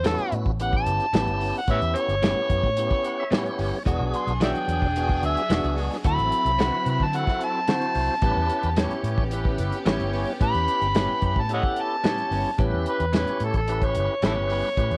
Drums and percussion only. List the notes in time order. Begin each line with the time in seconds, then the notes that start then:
0.04 snare, closed hi-hat
0.18 closed hi-hat
0.32 closed hi-hat
0.46 kick
0.60 closed hi-hat
0.73 kick
0.86 closed hi-hat
1.00 closed hi-hat
1.14 snare, closed hi-hat
1.27 closed hi-hat
1.41 open hi-hat
1.68 kick, closed hi-hat
1.82 closed hi-hat
1.96 closed hi-hat
2.09 closed hi-hat
2.23 snare, closed hi-hat
2.50 kick, closed hi-hat
2.64 kick
2.77 closed hi-hat
2.91 kick
3.04 closed hi-hat
3.32 snare, closed hi-hat
3.46 closed hi-hat
3.59 open hi-hat
3.86 kick, closed hi-hat
4.14 closed hi-hat
4.28 closed hi-hat
4.41 snare, closed hi-hat
4.55 closed hi-hat
4.69 closed hi-hat
4.82 kick
4.96 closed hi-hat
5.09 kick
5.23 closed hi-hat
5.37 closed hi-hat
5.50 snare, closed hi-hat
5.64 closed hi-hat
5.78 open hi-hat
5.93 snare
6.04 kick, closed hi-hat
6.19 closed hi-hat
6.32 closed hi-hat
6.46 closed hi-hat
6.59 snare, closed hi-hat
6.86 closed hi-hat
7.00 kick
7.13 closed hi-hat
7.27 kick, snare
7.41 closed hi-hat
7.67 snare, closed hi-hat
7.82 closed hi-hat
7.95 open hi-hat
8.22 kick, closed hi-hat
8.49 closed hi-hat
8.63 closed hi-hat
8.76 snare, closed hi-hat
8.91 closed hi-hat
9.04 closed hi-hat
9.18 kick
9.31 closed hi-hat
9.45 kick
9.58 closed hi-hat
9.72 closed hi-hat
9.86 snare, closed hi-hat
10.00 closed hi-hat
10.13 open hi-hat
10.41 kick, closed hi-hat
10.55 closed hi-hat
10.68 closed hi-hat
10.82 closed hi-hat
10.95 snare, closed hi-hat
11.22 kick, closed hi-hat
11.36 kick
11.49 closed hi-hat
11.63 kick
11.76 closed hi-hat
12.04 snare, closed hi-hat
12.18 closed hi-hat
12.32 open hi-hat
12.58 kick, closed hi-hat
12.86 closed hi-hat
13.00 closed hi-hat
13.13 snare, closed hi-hat
13.27 closed hi-hat
13.40 closed hi-hat
13.54 kick, closed hi-hat
13.68 closed hi-hat
13.82 kick, closed hi-hat
13.95 closed hi-hat
14.22 snare, closed hi-hat
14.50 open hi-hat
14.77 kick, closed hi-hat
14.91 closed hi-hat